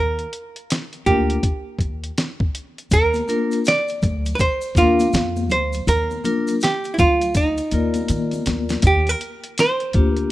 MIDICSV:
0, 0, Header, 1, 5, 480
1, 0, Start_track
1, 0, Key_signature, -3, "major"
1, 0, Tempo, 740741
1, 1884, Time_signature, 4, 2, 24, 8
1, 6686, End_track
2, 0, Start_track
2, 0, Title_t, "Hollow-body jazz guitar"
2, 0, Program_c, 0, 26
2, 0, Note_on_c, 0, 70, 88
2, 689, Note_on_c, 0, 67, 80
2, 705, Note_off_c, 0, 70, 0
2, 1381, Note_off_c, 0, 67, 0
2, 1902, Note_on_c, 0, 70, 95
2, 2383, Note_off_c, 0, 70, 0
2, 2385, Note_on_c, 0, 74, 103
2, 2818, Note_off_c, 0, 74, 0
2, 2821, Note_on_c, 0, 71, 76
2, 2849, Note_off_c, 0, 71, 0
2, 2856, Note_on_c, 0, 72, 100
2, 3097, Note_off_c, 0, 72, 0
2, 3097, Note_on_c, 0, 65, 92
2, 3576, Note_on_c, 0, 72, 87
2, 3585, Note_off_c, 0, 65, 0
2, 3812, Note_off_c, 0, 72, 0
2, 3815, Note_on_c, 0, 70, 84
2, 4296, Note_off_c, 0, 70, 0
2, 4299, Note_on_c, 0, 67, 81
2, 4497, Note_on_c, 0, 64, 57
2, 4504, Note_off_c, 0, 67, 0
2, 4527, Note_off_c, 0, 64, 0
2, 4532, Note_on_c, 0, 65, 84
2, 4772, Note_off_c, 0, 65, 0
2, 4774, Note_on_c, 0, 63, 75
2, 5463, Note_off_c, 0, 63, 0
2, 5746, Note_on_c, 0, 67, 82
2, 5891, Note_off_c, 0, 67, 0
2, 5891, Note_on_c, 0, 70, 101
2, 6219, Note_off_c, 0, 70, 0
2, 6222, Note_on_c, 0, 72, 108
2, 6578, Note_off_c, 0, 72, 0
2, 6578, Note_on_c, 0, 70, 108
2, 6686, Note_off_c, 0, 70, 0
2, 6686, End_track
3, 0, Start_track
3, 0, Title_t, "Vibraphone"
3, 0, Program_c, 1, 11
3, 689, Note_on_c, 1, 58, 60
3, 690, Note_on_c, 1, 62, 55
3, 691, Note_on_c, 1, 65, 51
3, 694, Note_on_c, 1, 70, 65
3, 872, Note_off_c, 1, 58, 0
3, 873, Note_off_c, 1, 62, 0
3, 874, Note_off_c, 1, 65, 0
3, 875, Note_off_c, 1, 70, 0
3, 2125, Note_on_c, 1, 58, 74
3, 2129, Note_on_c, 1, 62, 65
3, 2131, Note_on_c, 1, 65, 63
3, 2134, Note_on_c, 1, 70, 88
3, 2311, Note_off_c, 1, 58, 0
3, 2313, Note_off_c, 1, 62, 0
3, 2314, Note_off_c, 1, 65, 0
3, 2315, Note_off_c, 1, 70, 0
3, 3087, Note_on_c, 1, 58, 60
3, 3091, Note_on_c, 1, 62, 64
3, 3092, Note_on_c, 1, 65, 58
3, 3095, Note_on_c, 1, 70, 64
3, 3272, Note_off_c, 1, 58, 0
3, 3273, Note_off_c, 1, 62, 0
3, 3274, Note_off_c, 1, 65, 0
3, 3276, Note_off_c, 1, 70, 0
3, 4045, Note_on_c, 1, 58, 69
3, 4047, Note_on_c, 1, 65, 62
3, 4048, Note_on_c, 1, 62, 65
3, 4051, Note_on_c, 1, 70, 81
3, 4231, Note_off_c, 1, 58, 0
3, 4232, Note_off_c, 1, 62, 0
3, 4232, Note_off_c, 1, 65, 0
3, 4234, Note_off_c, 1, 70, 0
3, 5004, Note_on_c, 1, 58, 56
3, 5008, Note_on_c, 1, 74, 51
3, 5011, Note_on_c, 1, 65, 53
3, 5012, Note_on_c, 1, 70, 60
3, 5688, Note_off_c, 1, 58, 0
3, 5690, Note_off_c, 1, 74, 0
3, 5692, Note_off_c, 1, 65, 0
3, 5692, Note_off_c, 1, 70, 0
3, 6441, Note_on_c, 1, 58, 57
3, 6443, Note_on_c, 1, 62, 50
3, 6447, Note_on_c, 1, 65, 50
3, 6451, Note_on_c, 1, 67, 63
3, 6686, Note_off_c, 1, 58, 0
3, 6686, Note_off_c, 1, 62, 0
3, 6686, Note_off_c, 1, 65, 0
3, 6686, Note_off_c, 1, 67, 0
3, 6686, End_track
4, 0, Start_track
4, 0, Title_t, "Upright bass"
4, 0, Program_c, 2, 32
4, 0, Note_on_c, 2, 39, 86
4, 161, Note_off_c, 2, 39, 0
4, 691, Note_on_c, 2, 38, 87
4, 880, Note_off_c, 2, 38, 0
4, 1159, Note_on_c, 2, 39, 76
4, 1353, Note_off_c, 2, 39, 0
4, 1890, Note_on_c, 2, 39, 97
4, 2079, Note_off_c, 2, 39, 0
4, 2613, Note_on_c, 2, 38, 86
4, 2801, Note_off_c, 2, 38, 0
4, 3080, Note_on_c, 2, 39, 75
4, 3273, Note_off_c, 2, 39, 0
4, 3328, Note_on_c, 2, 41, 98
4, 3568, Note_off_c, 2, 41, 0
4, 3568, Note_on_c, 2, 38, 81
4, 3759, Note_off_c, 2, 38, 0
4, 3805, Note_on_c, 2, 39, 99
4, 3997, Note_off_c, 2, 39, 0
4, 4529, Note_on_c, 2, 38, 83
4, 4911, Note_off_c, 2, 38, 0
4, 5004, Note_on_c, 2, 39, 81
4, 5196, Note_off_c, 2, 39, 0
4, 5246, Note_on_c, 2, 51, 93
4, 5437, Note_off_c, 2, 51, 0
4, 5487, Note_on_c, 2, 39, 77
4, 5678, Note_off_c, 2, 39, 0
4, 5723, Note_on_c, 2, 39, 95
4, 5915, Note_off_c, 2, 39, 0
4, 6446, Note_on_c, 2, 38, 83
4, 6637, Note_off_c, 2, 38, 0
4, 6686, End_track
5, 0, Start_track
5, 0, Title_t, "Drums"
5, 121, Note_on_c, 9, 42, 33
5, 186, Note_off_c, 9, 42, 0
5, 213, Note_on_c, 9, 42, 53
5, 278, Note_off_c, 9, 42, 0
5, 363, Note_on_c, 9, 42, 47
5, 428, Note_off_c, 9, 42, 0
5, 456, Note_on_c, 9, 42, 98
5, 465, Note_on_c, 9, 38, 106
5, 521, Note_off_c, 9, 42, 0
5, 530, Note_off_c, 9, 38, 0
5, 601, Note_on_c, 9, 42, 33
5, 666, Note_off_c, 9, 42, 0
5, 690, Note_on_c, 9, 36, 93
5, 690, Note_on_c, 9, 42, 62
5, 754, Note_off_c, 9, 42, 0
5, 755, Note_off_c, 9, 36, 0
5, 841, Note_on_c, 9, 42, 47
5, 906, Note_off_c, 9, 42, 0
5, 927, Note_on_c, 9, 36, 92
5, 929, Note_on_c, 9, 42, 80
5, 992, Note_off_c, 9, 36, 0
5, 994, Note_off_c, 9, 42, 0
5, 1157, Note_on_c, 9, 36, 72
5, 1170, Note_on_c, 9, 42, 60
5, 1222, Note_off_c, 9, 36, 0
5, 1235, Note_off_c, 9, 42, 0
5, 1319, Note_on_c, 9, 42, 43
5, 1384, Note_off_c, 9, 42, 0
5, 1410, Note_on_c, 9, 42, 80
5, 1414, Note_on_c, 9, 38, 105
5, 1475, Note_off_c, 9, 42, 0
5, 1478, Note_off_c, 9, 38, 0
5, 1556, Note_on_c, 9, 36, 98
5, 1621, Note_off_c, 9, 36, 0
5, 1651, Note_on_c, 9, 42, 62
5, 1716, Note_off_c, 9, 42, 0
5, 1804, Note_on_c, 9, 42, 39
5, 1868, Note_off_c, 9, 42, 0
5, 1884, Note_on_c, 9, 82, 62
5, 1888, Note_on_c, 9, 36, 112
5, 1890, Note_on_c, 9, 42, 94
5, 1949, Note_off_c, 9, 82, 0
5, 1953, Note_off_c, 9, 36, 0
5, 1954, Note_off_c, 9, 42, 0
5, 2033, Note_on_c, 9, 63, 51
5, 2033, Note_on_c, 9, 82, 36
5, 2047, Note_on_c, 9, 42, 31
5, 2098, Note_off_c, 9, 63, 0
5, 2098, Note_off_c, 9, 82, 0
5, 2112, Note_off_c, 9, 42, 0
5, 2127, Note_on_c, 9, 63, 41
5, 2127, Note_on_c, 9, 82, 39
5, 2136, Note_on_c, 9, 42, 56
5, 2192, Note_off_c, 9, 63, 0
5, 2192, Note_off_c, 9, 82, 0
5, 2201, Note_off_c, 9, 42, 0
5, 2277, Note_on_c, 9, 82, 43
5, 2287, Note_on_c, 9, 42, 54
5, 2342, Note_off_c, 9, 82, 0
5, 2352, Note_off_c, 9, 42, 0
5, 2365, Note_on_c, 9, 82, 68
5, 2377, Note_on_c, 9, 42, 88
5, 2386, Note_on_c, 9, 38, 96
5, 2429, Note_off_c, 9, 82, 0
5, 2442, Note_off_c, 9, 42, 0
5, 2451, Note_off_c, 9, 38, 0
5, 2514, Note_on_c, 9, 82, 35
5, 2526, Note_on_c, 9, 42, 33
5, 2579, Note_off_c, 9, 82, 0
5, 2591, Note_off_c, 9, 42, 0
5, 2606, Note_on_c, 9, 64, 60
5, 2606, Note_on_c, 9, 82, 39
5, 2610, Note_on_c, 9, 36, 94
5, 2614, Note_on_c, 9, 42, 60
5, 2670, Note_off_c, 9, 64, 0
5, 2670, Note_off_c, 9, 82, 0
5, 2674, Note_off_c, 9, 36, 0
5, 2679, Note_off_c, 9, 42, 0
5, 2759, Note_on_c, 9, 82, 41
5, 2762, Note_on_c, 9, 42, 51
5, 2824, Note_off_c, 9, 82, 0
5, 2826, Note_off_c, 9, 42, 0
5, 2844, Note_on_c, 9, 82, 62
5, 2847, Note_on_c, 9, 36, 86
5, 2853, Note_on_c, 9, 42, 73
5, 2909, Note_off_c, 9, 82, 0
5, 2912, Note_off_c, 9, 36, 0
5, 2917, Note_off_c, 9, 42, 0
5, 2991, Note_on_c, 9, 82, 49
5, 3056, Note_off_c, 9, 82, 0
5, 3078, Note_on_c, 9, 36, 74
5, 3085, Note_on_c, 9, 63, 43
5, 3085, Note_on_c, 9, 82, 44
5, 3092, Note_on_c, 9, 42, 67
5, 3143, Note_off_c, 9, 36, 0
5, 3150, Note_off_c, 9, 63, 0
5, 3150, Note_off_c, 9, 82, 0
5, 3157, Note_off_c, 9, 42, 0
5, 3238, Note_on_c, 9, 63, 68
5, 3238, Note_on_c, 9, 82, 50
5, 3245, Note_on_c, 9, 42, 46
5, 3302, Note_off_c, 9, 63, 0
5, 3302, Note_off_c, 9, 82, 0
5, 3309, Note_off_c, 9, 42, 0
5, 3324, Note_on_c, 9, 82, 55
5, 3332, Note_on_c, 9, 42, 78
5, 3336, Note_on_c, 9, 38, 112
5, 3388, Note_off_c, 9, 82, 0
5, 3397, Note_off_c, 9, 42, 0
5, 3401, Note_off_c, 9, 38, 0
5, 3477, Note_on_c, 9, 63, 61
5, 3477, Note_on_c, 9, 82, 48
5, 3542, Note_off_c, 9, 63, 0
5, 3542, Note_off_c, 9, 82, 0
5, 3562, Note_on_c, 9, 64, 60
5, 3562, Note_on_c, 9, 82, 38
5, 3573, Note_on_c, 9, 42, 67
5, 3626, Note_off_c, 9, 64, 0
5, 3626, Note_off_c, 9, 82, 0
5, 3638, Note_off_c, 9, 42, 0
5, 3713, Note_on_c, 9, 82, 45
5, 3723, Note_on_c, 9, 42, 41
5, 3778, Note_off_c, 9, 82, 0
5, 3788, Note_off_c, 9, 42, 0
5, 3807, Note_on_c, 9, 82, 60
5, 3811, Note_on_c, 9, 42, 88
5, 3872, Note_off_c, 9, 82, 0
5, 3876, Note_off_c, 9, 42, 0
5, 3956, Note_on_c, 9, 63, 47
5, 3956, Note_on_c, 9, 82, 36
5, 4021, Note_off_c, 9, 63, 0
5, 4021, Note_off_c, 9, 82, 0
5, 4046, Note_on_c, 9, 63, 41
5, 4046, Note_on_c, 9, 64, 51
5, 4046, Note_on_c, 9, 82, 39
5, 4051, Note_on_c, 9, 42, 56
5, 4111, Note_off_c, 9, 63, 0
5, 4111, Note_off_c, 9, 64, 0
5, 4111, Note_off_c, 9, 82, 0
5, 4116, Note_off_c, 9, 42, 0
5, 4196, Note_on_c, 9, 82, 47
5, 4203, Note_on_c, 9, 42, 52
5, 4261, Note_off_c, 9, 82, 0
5, 4267, Note_off_c, 9, 42, 0
5, 4282, Note_on_c, 9, 82, 67
5, 4295, Note_on_c, 9, 42, 93
5, 4304, Note_on_c, 9, 38, 95
5, 4346, Note_off_c, 9, 82, 0
5, 4360, Note_off_c, 9, 42, 0
5, 4369, Note_off_c, 9, 38, 0
5, 4432, Note_on_c, 9, 82, 34
5, 4440, Note_on_c, 9, 42, 33
5, 4496, Note_off_c, 9, 82, 0
5, 4505, Note_off_c, 9, 42, 0
5, 4524, Note_on_c, 9, 64, 59
5, 4524, Note_on_c, 9, 82, 39
5, 4527, Note_on_c, 9, 36, 94
5, 4527, Note_on_c, 9, 42, 57
5, 4588, Note_off_c, 9, 64, 0
5, 4588, Note_off_c, 9, 82, 0
5, 4592, Note_off_c, 9, 36, 0
5, 4592, Note_off_c, 9, 42, 0
5, 4675, Note_on_c, 9, 42, 47
5, 4676, Note_on_c, 9, 82, 42
5, 4740, Note_off_c, 9, 42, 0
5, 4741, Note_off_c, 9, 82, 0
5, 4760, Note_on_c, 9, 82, 60
5, 4761, Note_on_c, 9, 42, 77
5, 4762, Note_on_c, 9, 36, 91
5, 4825, Note_off_c, 9, 42, 0
5, 4825, Note_off_c, 9, 82, 0
5, 4827, Note_off_c, 9, 36, 0
5, 4909, Note_on_c, 9, 82, 47
5, 4911, Note_on_c, 9, 42, 36
5, 4974, Note_off_c, 9, 82, 0
5, 4976, Note_off_c, 9, 42, 0
5, 4998, Note_on_c, 9, 63, 36
5, 4998, Note_on_c, 9, 82, 39
5, 4999, Note_on_c, 9, 42, 61
5, 5063, Note_off_c, 9, 63, 0
5, 5063, Note_off_c, 9, 82, 0
5, 5064, Note_off_c, 9, 42, 0
5, 5144, Note_on_c, 9, 42, 42
5, 5154, Note_on_c, 9, 63, 66
5, 5154, Note_on_c, 9, 82, 43
5, 5209, Note_off_c, 9, 42, 0
5, 5219, Note_off_c, 9, 63, 0
5, 5219, Note_off_c, 9, 82, 0
5, 5238, Note_on_c, 9, 42, 72
5, 5247, Note_on_c, 9, 82, 60
5, 5303, Note_off_c, 9, 42, 0
5, 5311, Note_off_c, 9, 82, 0
5, 5387, Note_on_c, 9, 42, 33
5, 5399, Note_on_c, 9, 63, 67
5, 5399, Note_on_c, 9, 82, 45
5, 5452, Note_off_c, 9, 42, 0
5, 5464, Note_off_c, 9, 63, 0
5, 5464, Note_off_c, 9, 82, 0
5, 5481, Note_on_c, 9, 42, 66
5, 5483, Note_on_c, 9, 64, 54
5, 5483, Note_on_c, 9, 82, 38
5, 5490, Note_on_c, 9, 38, 89
5, 5546, Note_off_c, 9, 42, 0
5, 5547, Note_off_c, 9, 64, 0
5, 5547, Note_off_c, 9, 82, 0
5, 5554, Note_off_c, 9, 38, 0
5, 5633, Note_on_c, 9, 42, 39
5, 5633, Note_on_c, 9, 82, 46
5, 5640, Note_on_c, 9, 38, 77
5, 5697, Note_off_c, 9, 42, 0
5, 5698, Note_off_c, 9, 82, 0
5, 5705, Note_off_c, 9, 38, 0
5, 5717, Note_on_c, 9, 42, 89
5, 5721, Note_on_c, 9, 36, 111
5, 5782, Note_off_c, 9, 42, 0
5, 5786, Note_off_c, 9, 36, 0
5, 5876, Note_on_c, 9, 42, 31
5, 5941, Note_off_c, 9, 42, 0
5, 5967, Note_on_c, 9, 42, 54
5, 6032, Note_off_c, 9, 42, 0
5, 6114, Note_on_c, 9, 42, 52
5, 6179, Note_off_c, 9, 42, 0
5, 6206, Note_on_c, 9, 42, 101
5, 6215, Note_on_c, 9, 38, 98
5, 6271, Note_off_c, 9, 42, 0
5, 6280, Note_off_c, 9, 38, 0
5, 6351, Note_on_c, 9, 42, 31
5, 6416, Note_off_c, 9, 42, 0
5, 6437, Note_on_c, 9, 42, 56
5, 6443, Note_on_c, 9, 36, 99
5, 6502, Note_off_c, 9, 42, 0
5, 6508, Note_off_c, 9, 36, 0
5, 6587, Note_on_c, 9, 42, 50
5, 6652, Note_off_c, 9, 42, 0
5, 6686, End_track
0, 0, End_of_file